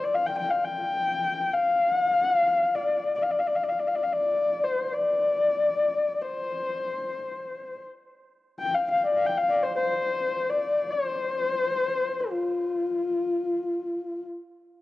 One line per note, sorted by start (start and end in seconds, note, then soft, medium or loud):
0.04 0.16 D5 medium
0.15 0.28 F5 medium
0.26 0.38 G5 medium
0.38 0.52 G5 medium
0.50 0.66 F5 medium
0.64 1.55 G5 medium
1.53 1.96 F5 medium
1.96 2.07 F#5 medium
2.07 2.77 F5 medium
2.75 3.15 D5 medium
3.15 3.24 D5 medium
3.22 3.32 F5 medium
3.31 3.41 D5 medium
3.39 3.49 F5 medium
3.47 3.57 D5 medium
3.55 3.65 F5 medium
3.64 3.71 D5 medium
3.69 3.81 F5 medium
3.79 3.89 D5 medium
3.87 3.97 F5 medium
3.95 4.05 D5 medium
4.03 4.15 F5 medium
4.13 4.66 D5 medium
4.64 4.95 C5 medium
4.94 6.24 D5 medium
6.22 7.81 C5 medium
8.59 8.77 G5 medium
8.75 8.90 F5 medium
8.91 9.01 F5 medium
9.01 9.16 D5 medium
9.01 9.05 F5 medium
9.15 9.28 F5 medium
9.27 9.39 G5 medium
9.37 9.49 F5 medium
9.49 9.65 D5 medium
9.63 9.76 C5 medium
9.76 10.51 C5 medium
10.50 10.92 D5 medium
10.91 12.32 C5 medium
12.30 14.25 F4 medium